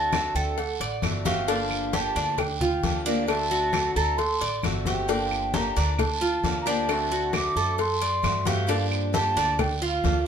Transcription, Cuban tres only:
0, 0, Header, 1, 2, 480
1, 0, Start_track
1, 0, Key_signature, -2, "minor"
1, 0, Tempo, 450789
1, 1574, Time_signature, 4, 2, 24, 8
1, 10937, End_track
2, 0, Start_track
2, 0, Title_t, "Cuban tres"
2, 0, Program_c, 0, 25
2, 0, Note_on_c, 0, 66, 72
2, 361, Note_off_c, 0, 66, 0
2, 379, Note_on_c, 0, 69, 73
2, 842, Note_off_c, 0, 69, 0
2, 861, Note_on_c, 0, 74, 83
2, 1323, Note_off_c, 0, 74, 0
2, 1337, Note_on_c, 0, 67, 79
2, 1568, Note_off_c, 0, 67, 0
2, 1579, Note_on_c, 0, 62, 82
2, 2042, Note_off_c, 0, 62, 0
2, 2061, Note_on_c, 0, 67, 70
2, 2290, Note_off_c, 0, 67, 0
2, 2300, Note_on_c, 0, 62, 82
2, 2763, Note_off_c, 0, 62, 0
2, 2781, Note_on_c, 0, 65, 82
2, 3244, Note_off_c, 0, 65, 0
2, 3257, Note_on_c, 0, 62, 89
2, 3722, Note_off_c, 0, 62, 0
2, 3738, Note_on_c, 0, 66, 74
2, 4203, Note_off_c, 0, 66, 0
2, 4220, Note_on_c, 0, 69, 72
2, 4684, Note_off_c, 0, 69, 0
2, 4700, Note_on_c, 0, 74, 77
2, 5164, Note_off_c, 0, 74, 0
2, 5181, Note_on_c, 0, 67, 78
2, 5412, Note_off_c, 0, 67, 0
2, 5416, Note_on_c, 0, 62, 72
2, 5882, Note_off_c, 0, 62, 0
2, 5896, Note_on_c, 0, 67, 70
2, 6129, Note_off_c, 0, 67, 0
2, 6139, Note_on_c, 0, 62, 79
2, 6603, Note_off_c, 0, 62, 0
2, 6615, Note_on_c, 0, 65, 81
2, 7081, Note_off_c, 0, 65, 0
2, 7099, Note_on_c, 0, 62, 90
2, 7563, Note_off_c, 0, 62, 0
2, 7576, Note_on_c, 0, 66, 73
2, 8042, Note_off_c, 0, 66, 0
2, 8057, Note_on_c, 0, 69, 73
2, 8522, Note_off_c, 0, 69, 0
2, 8534, Note_on_c, 0, 74, 81
2, 9000, Note_off_c, 0, 74, 0
2, 9016, Note_on_c, 0, 67, 86
2, 9248, Note_off_c, 0, 67, 0
2, 9249, Note_on_c, 0, 62, 86
2, 9717, Note_off_c, 0, 62, 0
2, 9736, Note_on_c, 0, 67, 69
2, 9968, Note_off_c, 0, 67, 0
2, 9974, Note_on_c, 0, 62, 88
2, 10440, Note_off_c, 0, 62, 0
2, 10454, Note_on_c, 0, 65, 78
2, 10919, Note_off_c, 0, 65, 0
2, 10937, End_track
0, 0, End_of_file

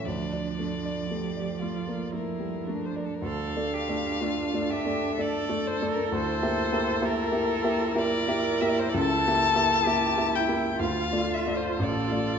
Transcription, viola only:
0, 0, Header, 1, 2, 480
1, 0, Start_track
1, 0, Key_signature, -1, "minor"
1, 0, Tempo, 1039861
1, 30, Time_signature, 3, 2, 24, 8
1, 991, Tempo, 1092896
1, 1471, Tempo, 986842
1, 1951, Tempo, 961538
1, 2431, Tempo, 923077
1, 3871, Tempo, 991736
1, 4351, Tempo, 931677
1, 5311, Tempo, 993377
1, 6072, End_track
2, 0, Start_track
2, 0, Title_t, "Viola"
2, 0, Program_c, 0, 41
2, 27, Note_on_c, 0, 62, 38
2, 462, Note_off_c, 0, 62, 0
2, 506, Note_on_c, 0, 67, 43
2, 742, Note_on_c, 0, 65, 38
2, 749, Note_off_c, 0, 67, 0
2, 981, Note_on_c, 0, 64, 37
2, 988, Note_off_c, 0, 65, 0
2, 1218, Note_on_c, 0, 62, 36
2, 1224, Note_off_c, 0, 64, 0
2, 1461, Note_off_c, 0, 62, 0
2, 1463, Note_on_c, 0, 62, 50
2, 2890, Note_off_c, 0, 62, 0
2, 2903, Note_on_c, 0, 64, 64
2, 5284, Note_off_c, 0, 64, 0
2, 5308, Note_on_c, 0, 65, 60
2, 6072, Note_off_c, 0, 65, 0
2, 6072, End_track
0, 0, End_of_file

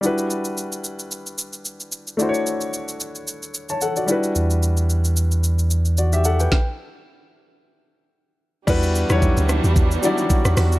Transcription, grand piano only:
0, 0, Header, 1, 2, 480
1, 0, Start_track
1, 0, Tempo, 540541
1, 28, Time_signature, 4, 2, 24, 8
1, 9582, End_track
2, 0, Start_track
2, 0, Title_t, "Grand piano"
2, 0, Program_c, 0, 0
2, 9, Note_on_c, 0, 55, 70
2, 21, Note_on_c, 0, 62, 65
2, 32, Note_on_c, 0, 64, 66
2, 44, Note_on_c, 0, 66, 64
2, 55, Note_on_c, 0, 71, 79
2, 201, Control_c, 0, 64, 127
2, 1902, Note_off_c, 0, 55, 0
2, 1908, Note_off_c, 0, 62, 0
2, 1914, Note_off_c, 0, 64, 0
2, 1920, Note_off_c, 0, 66, 0
2, 1926, Note_off_c, 0, 71, 0
2, 1928, Note_on_c, 0, 57, 69
2, 1940, Note_on_c, 0, 62, 66
2, 1952, Note_on_c, 0, 64, 65
2, 1960, Control_c, 0, 64, 0
2, 1964, Note_on_c, 0, 66, 66
2, 1976, Note_on_c, 0, 72, 63
2, 2025, Note_off_c, 0, 72, 0
2, 2033, Note_on_c, 0, 73, 79
2, 2089, Control_c, 0, 64, 127
2, 2897, Note_off_c, 0, 66, 0
2, 2932, Note_off_c, 0, 73, 0
2, 3284, Note_on_c, 0, 81, 63
2, 3289, Note_on_c, 0, 73, 53
2, 3384, Note_off_c, 0, 81, 0
2, 3387, Note_off_c, 0, 73, 0
2, 3391, Note_on_c, 0, 78, 66
2, 3397, Note_on_c, 0, 69, 57
2, 3515, Note_off_c, 0, 78, 0
2, 3518, Note_off_c, 0, 69, 0
2, 3523, Note_on_c, 0, 74, 63
2, 3529, Note_on_c, 0, 66, 53
2, 3584, Note_off_c, 0, 57, 0
2, 3590, Note_off_c, 0, 62, 0
2, 3596, Note_off_c, 0, 64, 0
2, 3609, Note_on_c, 0, 55, 71
2, 3620, Note_on_c, 0, 62, 65
2, 3630, Note_off_c, 0, 66, 0
2, 3632, Note_on_c, 0, 64, 67
2, 3640, Control_c, 0, 64, 0
2, 3643, Note_on_c, 0, 66, 66
2, 3656, Note_on_c, 0, 71, 77
2, 3749, Note_off_c, 0, 74, 0
2, 3807, Control_c, 0, 64, 127
2, 5282, Note_off_c, 0, 66, 0
2, 5288, Note_off_c, 0, 71, 0
2, 5312, Note_on_c, 0, 74, 61
2, 5317, Note_on_c, 0, 66, 51
2, 5435, Note_off_c, 0, 74, 0
2, 5438, Note_off_c, 0, 66, 0
2, 5443, Note_on_c, 0, 76, 67
2, 5449, Note_on_c, 0, 67, 59
2, 5502, Note_off_c, 0, 55, 0
2, 5508, Note_off_c, 0, 62, 0
2, 5514, Note_off_c, 0, 64, 0
2, 5544, Note_off_c, 0, 76, 0
2, 5547, Note_off_c, 0, 67, 0
2, 5552, Note_on_c, 0, 78, 71
2, 5557, Note_on_c, 0, 69, 57
2, 5675, Note_off_c, 0, 78, 0
2, 5678, Note_off_c, 0, 69, 0
2, 5684, Note_on_c, 0, 79, 60
2, 5689, Note_on_c, 0, 71, 53
2, 5797, Control_c, 0, 64, 0
2, 5910, Note_off_c, 0, 79, 0
2, 5913, Note_off_c, 0, 71, 0
2, 7699, Note_on_c, 0, 55, 110
2, 7706, Note_on_c, 0, 62, 101
2, 7711, Note_on_c, 0, 64, 97
2, 7718, Note_on_c, 0, 66, 101
2, 7723, Note_on_c, 0, 71, 126
2, 7895, Control_c, 0, 64, 127
2, 7996, Note_off_c, 0, 55, 0
2, 7999, Note_off_c, 0, 62, 0
2, 8002, Note_off_c, 0, 64, 0
2, 8005, Note_off_c, 0, 66, 0
2, 8008, Note_off_c, 0, 71, 0
2, 8072, Note_on_c, 0, 54, 72
2, 8078, Note_on_c, 0, 62, 83
2, 8084, Note_on_c, 0, 64, 80
2, 8090, Note_on_c, 0, 66, 84
2, 8096, Note_on_c, 0, 73, 101
2, 8128, Note_off_c, 0, 54, 0
2, 8130, Note_on_c, 0, 55, 86
2, 8746, Note_off_c, 0, 62, 0
2, 8749, Note_off_c, 0, 64, 0
2, 8752, Note_off_c, 0, 66, 0
2, 8755, Note_off_c, 0, 73, 0
2, 8772, Note_off_c, 0, 55, 0
2, 8901, Note_on_c, 0, 54, 73
2, 8907, Note_on_c, 0, 62, 81
2, 8913, Note_on_c, 0, 64, 82
2, 8919, Note_on_c, 0, 66, 82
2, 8925, Note_on_c, 0, 74, 104
2, 8958, Note_on_c, 0, 55, 89
2, 8967, Note_off_c, 0, 54, 0
2, 9493, Note_off_c, 0, 62, 0
2, 9496, Note_off_c, 0, 64, 0
2, 9499, Note_off_c, 0, 66, 0
2, 9502, Note_off_c, 0, 74, 0
2, 9518, Note_off_c, 0, 55, 0
2, 9582, End_track
0, 0, End_of_file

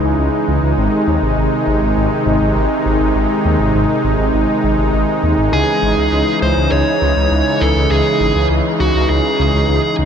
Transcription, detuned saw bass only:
0, 0, Header, 1, 2, 480
1, 0, Start_track
1, 0, Key_signature, 4, "minor"
1, 0, Tempo, 594059
1, 631, Time_signature, 4, 2, 24, 8
1, 8121, End_track
2, 0, Start_track
2, 0, Title_t, "Detuned saw bass"
2, 0, Program_c, 0, 39
2, 30, Note_on_c, 0, 37, 82
2, 116, Note_off_c, 0, 37, 0
2, 151, Note_on_c, 0, 37, 98
2, 236, Note_off_c, 0, 37, 0
2, 391, Note_on_c, 0, 37, 97
2, 476, Note_off_c, 0, 37, 0
2, 512, Note_on_c, 0, 37, 74
2, 597, Note_off_c, 0, 37, 0
2, 630, Note_on_c, 0, 32, 100
2, 716, Note_off_c, 0, 32, 0
2, 870, Note_on_c, 0, 39, 90
2, 956, Note_off_c, 0, 39, 0
2, 991, Note_on_c, 0, 32, 86
2, 1076, Note_off_c, 0, 32, 0
2, 1110, Note_on_c, 0, 32, 97
2, 1196, Note_off_c, 0, 32, 0
2, 1350, Note_on_c, 0, 32, 100
2, 1436, Note_off_c, 0, 32, 0
2, 1471, Note_on_c, 0, 32, 77
2, 1556, Note_off_c, 0, 32, 0
2, 1590, Note_on_c, 0, 32, 99
2, 1676, Note_off_c, 0, 32, 0
2, 1829, Note_on_c, 0, 32, 97
2, 1915, Note_off_c, 0, 32, 0
2, 1950, Note_on_c, 0, 32, 80
2, 2036, Note_off_c, 0, 32, 0
2, 2070, Note_on_c, 0, 32, 101
2, 2156, Note_off_c, 0, 32, 0
2, 2311, Note_on_c, 0, 32, 96
2, 2396, Note_off_c, 0, 32, 0
2, 2431, Note_on_c, 0, 32, 78
2, 2516, Note_off_c, 0, 32, 0
2, 2551, Note_on_c, 0, 32, 103
2, 2636, Note_off_c, 0, 32, 0
2, 2790, Note_on_c, 0, 39, 95
2, 2876, Note_off_c, 0, 39, 0
2, 2910, Note_on_c, 0, 32, 83
2, 2996, Note_off_c, 0, 32, 0
2, 3029, Note_on_c, 0, 32, 99
2, 3115, Note_off_c, 0, 32, 0
2, 3269, Note_on_c, 0, 32, 96
2, 3355, Note_off_c, 0, 32, 0
2, 3389, Note_on_c, 0, 32, 76
2, 3475, Note_off_c, 0, 32, 0
2, 3510, Note_on_c, 0, 32, 96
2, 3596, Note_off_c, 0, 32, 0
2, 3751, Note_on_c, 0, 32, 91
2, 3836, Note_off_c, 0, 32, 0
2, 3870, Note_on_c, 0, 32, 83
2, 3956, Note_off_c, 0, 32, 0
2, 3991, Note_on_c, 0, 32, 97
2, 4076, Note_off_c, 0, 32, 0
2, 4230, Note_on_c, 0, 39, 98
2, 4315, Note_off_c, 0, 39, 0
2, 4350, Note_on_c, 0, 32, 80
2, 4436, Note_off_c, 0, 32, 0
2, 4467, Note_on_c, 0, 37, 104
2, 4554, Note_off_c, 0, 37, 0
2, 4707, Note_on_c, 0, 32, 87
2, 4794, Note_off_c, 0, 32, 0
2, 4831, Note_on_c, 0, 37, 86
2, 4916, Note_off_c, 0, 37, 0
2, 4948, Note_on_c, 0, 37, 102
2, 5035, Note_off_c, 0, 37, 0
2, 5189, Note_on_c, 0, 37, 94
2, 5275, Note_off_c, 0, 37, 0
2, 5311, Note_on_c, 0, 37, 78
2, 5396, Note_off_c, 0, 37, 0
2, 5431, Note_on_c, 0, 37, 95
2, 5516, Note_off_c, 0, 37, 0
2, 5672, Note_on_c, 0, 37, 90
2, 5756, Note_off_c, 0, 37, 0
2, 5792, Note_on_c, 0, 37, 77
2, 5876, Note_off_c, 0, 37, 0
2, 5911, Note_on_c, 0, 37, 98
2, 5996, Note_off_c, 0, 37, 0
2, 6153, Note_on_c, 0, 37, 102
2, 6237, Note_off_c, 0, 37, 0
2, 6272, Note_on_c, 0, 37, 79
2, 6356, Note_off_c, 0, 37, 0
2, 6390, Note_on_c, 0, 37, 103
2, 6475, Note_off_c, 0, 37, 0
2, 6631, Note_on_c, 0, 32, 91
2, 6716, Note_off_c, 0, 32, 0
2, 6752, Note_on_c, 0, 37, 82
2, 6837, Note_off_c, 0, 37, 0
2, 6871, Note_on_c, 0, 37, 101
2, 6956, Note_off_c, 0, 37, 0
2, 7111, Note_on_c, 0, 37, 96
2, 7196, Note_off_c, 0, 37, 0
2, 7233, Note_on_c, 0, 37, 79
2, 7317, Note_off_c, 0, 37, 0
2, 7351, Note_on_c, 0, 37, 96
2, 7436, Note_off_c, 0, 37, 0
2, 7593, Note_on_c, 0, 37, 94
2, 7677, Note_off_c, 0, 37, 0
2, 7712, Note_on_c, 0, 37, 80
2, 7797, Note_off_c, 0, 37, 0
2, 7831, Note_on_c, 0, 37, 99
2, 7916, Note_off_c, 0, 37, 0
2, 8070, Note_on_c, 0, 37, 100
2, 8121, Note_off_c, 0, 37, 0
2, 8121, End_track
0, 0, End_of_file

